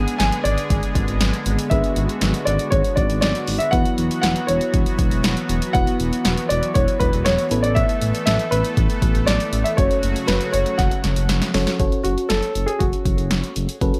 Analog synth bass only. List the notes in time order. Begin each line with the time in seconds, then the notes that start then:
0.20 G#1
0.45 G#1
0.70 G#1
0.95 G#1
1.08 G#1
1.21 G#1
1.46 G#1
1.71 G#1
1.97 G#1
2.22 G#1
2.47 G#1
2.72 G#1
2.97 G#1
3.10 G#1
3.23 G#1
3.48 G#1
3.73 E1
3.98 E1
4.23 E1
4.49 E1
4.74 E1
4.99 E1
5.12 E1
5.24 E1
5.49 E1
5.75 E1
6.00 E1
6.25 E1
6.51 E1
6.76 E1
7.00 E1
7.14 E1
7.26 E1
7.51 A1
8.02 A1
8.27 A1
8.52 A1
8.77 A1
9.02 A1
9.15 A1
9.28 A1
9.53 A1
9.78 F#1
10.03 F#1
10.28 F#1
10.54 F#1
10.79 F#1
11.04 F#1
11.17 F#1
11.29 F#1
11.54 F#1
11.80 F#1
12.05 F#1
12.30 F#1
12.55 F#1
12.81 F#1
13.05 F#1
13.18 F#1
13.31 F#1
13.56 F#1
13.81 F#1